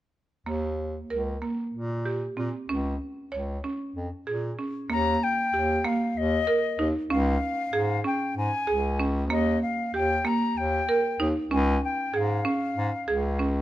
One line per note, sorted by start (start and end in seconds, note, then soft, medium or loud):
0.46 1.00 D#2 medium
0.46 0.87 A#3 medium
1.10 1.37 C#2 medium
1.10 1.31 A#4 soft
1.42 1.82 A#3 soft
1.74 2.27 A#2 medium
2.05 2.26 G4 medium
2.37 2.50 A#2 medium
2.37 2.57 C4 soft
2.69 2.96 C#2 medium
2.69 3.09 C#4 medium
3.32 3.59 C#2 medium
3.32 3.52 C#5 medium
3.64 4.04 C#4 soft
3.95 4.09 F2 medium
4.27 4.54 A#2 medium
4.27 4.47 G#4 medium
4.59 4.79 C#4 soft
4.90 5.17 D#2 medium
4.90 5.30 A#3 medium
4.90 5.25 A#5 medium
5.23 5.86 G5 medium
5.54 5.80 D#2 medium
5.54 5.73 G4 medium
5.84 6.25 A#3 medium
5.84 6.19 F5 medium
6.16 6.43 D#2 medium
6.16 6.88 D#5 medium
6.47 6.67 A#4 medium
6.79 6.92 D#2 medium
6.79 6.99 D#4 medium
7.10 7.37 C#2 medium
7.10 7.50 C#4 medium
7.10 8.01 F5 medium
7.73 8.00 G#2 medium
7.73 7.93 G#4 medium
8.04 8.45 C#4 medium
8.04 8.35 G5 medium
8.37 8.50 G#2 medium
8.37 9.04 G#5 medium
8.67 9.33 C#2 medium
8.67 8.88 G#4 medium
9.00 9.20 C#4 medium
9.30 9.58 D#2 medium
9.30 9.70 A#3 medium
9.30 9.60 D#5 medium
9.62 9.92 F5 medium
9.94 10.21 D#2 medium
9.94 10.14 G4 medium
9.94 10.28 G5 medium
10.25 10.65 A#3 medium
10.25 10.59 A#5 medium
10.57 10.83 D#2 medium
10.57 11.28 G5 medium
10.89 11.09 A#4 medium
11.20 11.33 D#2 medium
11.20 11.40 D#4 medium
11.51 11.78 C#2 medium
11.51 11.91 C#4 medium
11.51 11.81 G#5 medium
11.84 12.18 G5 medium
12.14 12.41 G#2 medium
12.14 12.34 G#4 medium
12.14 13.41 F5 medium
12.45 12.85 C#4 medium
12.77 12.90 G#2 medium
13.08 13.62 C#2 medium
13.08 13.28 G#4 medium
13.39 13.60 C#4 medium